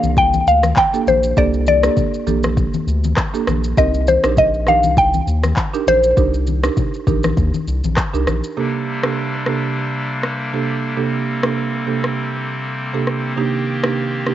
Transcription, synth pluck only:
0.00 0.18 F5 loud
0.18 0.45 G5 loud
0.48 0.76 F5 loud
0.78 1.09 G5 loud
1.08 1.39 C5 medium
1.38 1.51 D5 loud
1.68 2.24 D5 medium
3.78 4.08 D#5 loud
4.08 4.38 C5 medium
4.38 4.69 D#5 medium
4.68 4.96 F5 loud
4.98 5.54 G5 loud
5.88 7.94 C5 loud

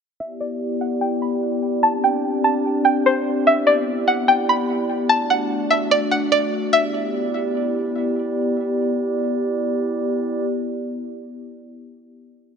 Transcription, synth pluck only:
0.20 0.38 E5 loud
0.40 0.79 D5 medium
0.81 0.99 F#5 medium
1.01 1.19 G5 medium
1.22 1.79 B5 medium
1.83 2.01 A5 loud
2.04 2.42 G5 medium
2.44 2.83 A5 medium
2.85 3.03 G5 medium
3.06 3.44 C5 medium
3.47 3.65 E5 loud
3.67 4.05 D5 medium
4.08 4.26 F#5 medium
4.28 4.46 G5 medium
4.49 5.06 B5 medium
5.09 5.28 A5 loud
5.30 5.69 F#5 medium
5.71 5.89 E5 medium
5.91 6.09 D5 medium
6.11 6.30 F#5 medium
6.32 6.70 D5 medium
6.73 7.91 E5 medium

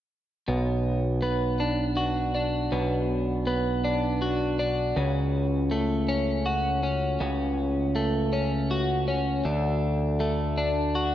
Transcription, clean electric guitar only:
0.48 2.35 B2 soft
1.22 3.09 B3 soft
1.60 2.33 D4 medium
1.97 4.21 F#4 medium
2.35 3.83 D4 soft
2.72 4.59 B2 medium
3.47 4.96 B3 medium
3.85 4.58 D4 soft
4.22 6.45 F#4 medium
4.59 4.97 D4 soft
4.96 6.83 C#3 medium
5.71 7.95 A3 medium
6.09 6.82 C#4 medium
6.46 8.70 F#4 medium
6.83 8.32 C#4 soft
7.20 9.08 C#3 medium
7.96 10.20 A3 soft
8.33 9.07 C#4 soft
8.71 10.95 F#4 medium
9.08 9.45 C#4 soft
9.45 11.15 D3 medium
10.20 11.15 A3 soft
10.58 11.15 D4 medium
10.95 11.15 F#4 medium

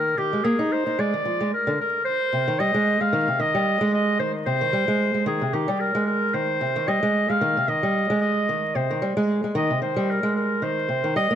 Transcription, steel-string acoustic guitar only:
0.00 0.17 D#3 medium
0.18 0.31 D#3 medium
0.33 0.44 G#3 medium
0.44 0.58 A#3 loud
0.59 0.85 D#4 loud
0.86 0.97 D#4 medium
0.99 1.13 G#3 medium
1.14 1.24 D#3 medium
1.25 1.39 F3 medium
1.41 1.51 G#3 medium
1.67 1.78 D3 loud
2.33 2.46 C3 medium
2.48 2.58 D#3 medium
2.60 2.73 G3 medium
2.74 3.00 G#3 loud
3.01 3.11 G#3 medium
3.13 3.27 D#3 loud
3.28 3.38 C3 medium
3.39 3.53 D#3 medium
3.55 3.80 G3 loud
3.81 4.19 G#3 loud
4.19 4.45 D#3 medium
4.46 4.60 C3 medium
4.61 4.72 D#3 medium
4.73 4.87 G3 loud
4.88 5.13 G#3 loud
5.14 5.25 G#3 medium
5.26 5.41 D#3 medium
5.41 5.52 C3 medium
5.53 5.67 D#3 medium
5.68 5.94 G3 loud
5.95 6.33 G#3 loud
6.34 6.60 D#3 medium
6.61 6.74 C3 medium
6.76 6.87 D#3 medium
6.88 7.01 G3 loud
7.03 7.28 G#3 loud
7.30 7.40 G#3 medium
7.41 7.56 D#3 loud
7.57 7.67 C3 medium
7.68 7.82 D#3 medium
7.83 8.08 G3 loud
8.10 8.47 G#3 loud
8.49 8.74 D#3 medium
8.75 8.89 C3 medium
8.91 9.01 D#3 medium
9.02 9.16 G3 loud
9.17 9.42 G#3 loud
9.44 9.54 G#3 medium
9.55 9.70 D#3 loud
9.70 9.81 C3 medium
9.82 9.96 D#3 medium
9.96 10.22 G3 loud
10.23 10.61 G#3 loud
10.62 10.88 D#3 medium
10.89 11.03 C3 medium
11.04 11.15 D#3 medium
11.16 11.30 G3 loud
11.31 11.35 A#3 loud

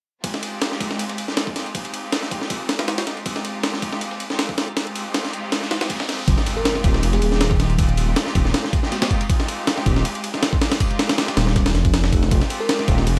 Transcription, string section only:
0.24 1.26 G#3 medium
0.24 1.26 C4 medium
0.24 1.26 D#4 medium
0.24 1.26 F4 medium
0.24 1.26 G4 medium
1.28 1.54 G#3 medium
1.28 1.54 C4 medium
1.28 1.54 D#4 medium
1.28 1.54 F4 medium
1.28 1.54 G4 medium
1.56 1.73 G#3 medium
1.56 1.73 C4 medium
1.56 1.73 D#4 medium
1.56 1.73 F4 medium
1.56 1.73 G4 medium
1.74 2.77 G#3 medium
1.74 2.77 C4 medium
1.74 2.77 D#4 medium
1.74 2.77 F4 medium
1.74 2.77 G4 medium
2.79 3.05 G#3 medium
2.79 3.05 C4 medium
2.79 3.05 D#4 medium
2.79 3.05 F4 medium
2.79 3.05 G4 medium
3.06 3.23 G#3 medium
3.06 3.24 C4 medium
3.06 3.24 D#4 medium
3.06 3.24 F4 medium
3.06 3.24 G4 medium
3.26 4.28 G#3 medium
3.26 4.28 C4 medium
3.26 4.28 D#4 medium
3.26 4.28 F4 medium
3.26 4.28 G4 loud
4.30 4.56 G#3 medium
4.30 4.56 C4 medium
4.30 4.56 D#4 medium
4.30 4.56 F4 medium
4.30 4.56 G4 medium
4.58 4.75 G#3 medium
4.58 4.75 C4 medium
4.58 4.75 D#4 medium
4.58 4.75 F4 medium
4.58 4.75 G4 medium
4.77 5.79 G#3 medium
4.77 5.79 C4 medium
4.77 5.79 D#4 medium
4.77 5.79 F4 medium
4.77 5.79 G4 loud
5.81 6.07 G#3 medium
5.81 6.07 C4 medium
5.81 6.07 D#4 medium
5.81 6.07 F4 medium
5.81 6.07 G4 medium
6.09 6.26 G#3 medium
6.09 6.26 C4 medium
6.09 6.26 D#4 medium
6.09 6.26 F4 medium
6.09 6.26 G4 medium
6.28 7.30 G#3 medium
6.28 7.30 C4 medium
6.28 7.30 D#4 medium
6.28 7.30 F4 medium
6.28 7.30 G4 loud
7.32 7.58 G#3 medium
7.32 7.58 C4 medium
7.32 7.58 D#4 medium
7.32 7.58 F4 medium
7.32 7.58 G4 loud
7.60 7.77 G#3 medium
7.60 7.77 C4 medium
7.60 7.77 D#4 medium
7.60 7.77 F4 medium
7.60 7.77 G4 medium
7.79 8.81 G#3 loud
7.79 8.81 C4 medium
7.79 8.81 D#4 medium
7.79 8.81 F4 medium
7.79 8.81 G4 loud
8.83 9.09 G#3 medium
8.83 9.09 C4 medium
8.83 9.09 D#4 medium
8.83 9.09 F4 medium
8.83 9.09 G4 medium
9.11 9.28 G#3 medium
9.11 9.28 C4 medium
9.11 9.28 D#4 medium
9.11 9.28 F4 medium
9.11 9.28 G4 medium
9.29 10.32 G#3 medium
9.29 10.31 C4 medium
9.29 10.32 D#4 medium
9.29 10.32 F4 medium
9.29 10.32 G4 loud
10.34 10.59 G#3 medium
10.34 10.59 C4 medium
10.34 10.59 D#4 medium
10.34 10.59 F4 medium
10.34 10.59 G4 medium
10.61 10.78 G#3 medium
10.61 10.78 C4 medium
10.61 10.78 D#4 medium
10.61 10.78 F4 medium
10.61 10.78 G4 medium
10.80 11.82 G#3 loud
10.80 11.82 C4 medium
10.80 11.82 D#4 medium
10.80 11.82 F4 medium
10.80 11.82 G4 loud
12.31 13.19 G#3 medium
12.31 13.19 C4 medium
12.31 13.19 D#4 medium
12.31 13.19 F4 medium
12.31 13.19 G4 loud

